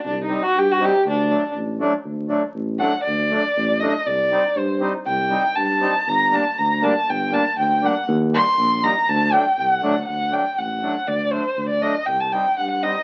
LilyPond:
<<
  \new Staff \with { instrumentName = "Violin" } { \time 2/4 \tempo 4 = 120 \tuplet 3/2 { d'8 ees'8 fis'8 } g'16 fis'16 g'8 | d'4 r4 | r4. fis''8 | d''4. ees''8 |
d''4 c''8 r8 | g''4 a''4 | bes''8 a''8 bes''8 a''8 | g''8 a''8 g''8 fis''8 |
r8 c'''4 bes''8 | a''8 g''8 fis''4 | fis''8 g''8 fis''4 | d''8 c''8. d''16 ees''8 |
g''16 a''16 g''8 fis''16 fis''16 ees''8 | }
  \new Staff \with { instrumentName = "Accordion" } { \time 2/4 r8 <g c' ees'>16 r8. <g c' ees'>16 r16 | r8 <fis a d'>16 r8. <fis a d'>16 r16 | r8 <fis a d'>16 r8. <fis a d'>16 r16 | r8 <fis a d'>16 r8. <fis a d'>16 r16 |
r8 <g c' ees'>16 r8. <g c' ees'>16 r16 | r8 <g c' ees'>16 r8. <g c' ees'>16 r16 | r8 <g bes d'>16 r8. <g bes d'>16 r16 | r8 <g bes d'>16 r8. <g bes d'>16 r16 |
r8 <g bes ees'>16 r8. <g bes ees'>16 r16 | r8 <fis a d'>16 r8. <fis a d'>16 r16 | r8 <fis a d'>16 r8. <fis a d'>16 r16 | r8 <fis a d'>16 r8. <fis a d'>16 r16 |
r8 <g c' ees'>16 r8. <g c' ees'>16 r16 | }
  \new Staff \with { instrumentName = "Tuba" } { \clef bass \time 2/4 c,4 g,4 | d,4 a,,4 | d,4 a,,4 | d,4 a,,4 |
c,4 g,4 | c,4 g,4 | g,,4 d,4 | g,,4 d,4 |
ees,4 bes,,4 | d,4 c,8 d,8 | d,4 a,,4 | d,4 d,4 |
c,4 g,4 | }
>>